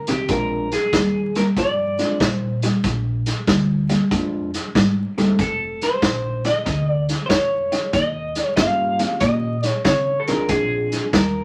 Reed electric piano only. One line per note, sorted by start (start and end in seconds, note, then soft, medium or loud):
0.29 0.67 G#3 medium
0.29 0.67 C4 soft
0.29 0.67 D4 medium
0.29 0.67 F4 medium
1.98 2.18 G#3 medium
1.98 2.18 C4 medium
1.98 2.18 D4 medium
1.98 2.18 F4 medium
4.11 4.49 G#3 medium
4.11 4.50 C4 soft
4.11 4.50 D4 medium
4.11 4.50 F4 medium
5.17 5.37 A3 medium
5.17 5.37 C4 medium
5.17 5.37 D#4 soft
5.17 5.37 A4 medium
8.58 9.56 A#3 medium
8.58 9.56 C#4 medium
8.58 9.56 F4 soft
8.58 9.56 G4 medium
10.28 11.09 C4 medium
10.28 11.09 D4 medium
10.28 11.10 F4 medium
10.28 11.10 G#4 medium